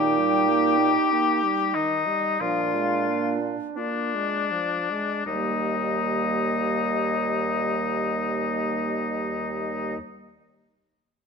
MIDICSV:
0, 0, Header, 1, 6, 480
1, 0, Start_track
1, 0, Key_signature, -3, "major"
1, 0, Tempo, 1221996
1, 438, Tempo, 1282051
1, 918, Tempo, 1366743
1, 1398, Tempo, 1500000
1, 1878, Tempo, 1449275
1, 1879, Time_signature, 4, 2, 24, 8
1, 2358, Tempo, 1415094
1, 3902, End_track
2, 0, Start_track
2, 0, Title_t, "Flute"
2, 0, Program_c, 0, 73
2, 0, Note_on_c, 0, 79, 73
2, 552, Note_off_c, 0, 79, 0
2, 668, Note_on_c, 0, 75, 48
2, 918, Note_on_c, 0, 77, 58
2, 923, Note_off_c, 0, 75, 0
2, 1269, Note_off_c, 0, 77, 0
2, 1403, Note_on_c, 0, 74, 41
2, 1868, Note_off_c, 0, 74, 0
2, 1878, Note_on_c, 0, 75, 52
2, 3460, Note_off_c, 0, 75, 0
2, 3902, End_track
3, 0, Start_track
3, 0, Title_t, "Oboe"
3, 0, Program_c, 1, 68
3, 0, Note_on_c, 1, 67, 74
3, 674, Note_on_c, 1, 63, 69
3, 680, Note_off_c, 1, 67, 0
3, 920, Note_on_c, 1, 65, 57
3, 926, Note_off_c, 1, 63, 0
3, 1270, Note_off_c, 1, 65, 0
3, 1396, Note_on_c, 1, 62, 54
3, 1865, Note_off_c, 1, 62, 0
3, 1877, Note_on_c, 1, 63, 54
3, 3459, Note_off_c, 1, 63, 0
3, 3902, End_track
4, 0, Start_track
4, 0, Title_t, "Clarinet"
4, 0, Program_c, 2, 71
4, 0, Note_on_c, 2, 63, 74
4, 787, Note_off_c, 2, 63, 0
4, 916, Note_on_c, 2, 62, 51
4, 1401, Note_on_c, 2, 65, 42
4, 1406, Note_off_c, 2, 62, 0
4, 1639, Note_off_c, 2, 65, 0
4, 1879, Note_on_c, 2, 58, 52
4, 3461, Note_off_c, 2, 58, 0
4, 3902, End_track
5, 0, Start_track
5, 0, Title_t, "French horn"
5, 0, Program_c, 3, 60
5, 0, Note_on_c, 3, 51, 47
5, 74, Note_on_c, 3, 55, 42
5, 80, Note_off_c, 3, 51, 0
5, 190, Note_on_c, 3, 58, 51
5, 196, Note_off_c, 3, 55, 0
5, 308, Note_on_c, 3, 63, 42
5, 314, Note_off_c, 3, 58, 0
5, 440, Note_on_c, 3, 58, 41
5, 446, Note_off_c, 3, 63, 0
5, 561, Note_on_c, 3, 55, 36
5, 567, Note_off_c, 3, 58, 0
5, 676, Note_on_c, 3, 51, 38
5, 682, Note_off_c, 3, 55, 0
5, 794, Note_on_c, 3, 55, 35
5, 800, Note_off_c, 3, 51, 0
5, 917, Note_off_c, 3, 55, 0
5, 920, Note_on_c, 3, 53, 44
5, 1041, Note_on_c, 3, 56, 38
5, 1046, Note_off_c, 3, 53, 0
5, 1164, Note_on_c, 3, 58, 35
5, 1169, Note_off_c, 3, 56, 0
5, 1274, Note_on_c, 3, 62, 37
5, 1280, Note_off_c, 3, 58, 0
5, 1399, Note_on_c, 3, 58, 35
5, 1404, Note_off_c, 3, 62, 0
5, 1520, Note_on_c, 3, 56, 35
5, 1525, Note_off_c, 3, 58, 0
5, 1637, Note_on_c, 3, 53, 38
5, 1642, Note_off_c, 3, 56, 0
5, 1763, Note_on_c, 3, 56, 37
5, 1768, Note_off_c, 3, 53, 0
5, 1877, Note_off_c, 3, 56, 0
5, 1879, Note_on_c, 3, 55, 38
5, 3461, Note_off_c, 3, 55, 0
5, 3902, End_track
6, 0, Start_track
6, 0, Title_t, "Bassoon"
6, 0, Program_c, 4, 70
6, 0, Note_on_c, 4, 46, 55
6, 356, Note_off_c, 4, 46, 0
6, 922, Note_on_c, 4, 46, 50
6, 1318, Note_off_c, 4, 46, 0
6, 1879, Note_on_c, 4, 39, 46
6, 3461, Note_off_c, 4, 39, 0
6, 3902, End_track
0, 0, End_of_file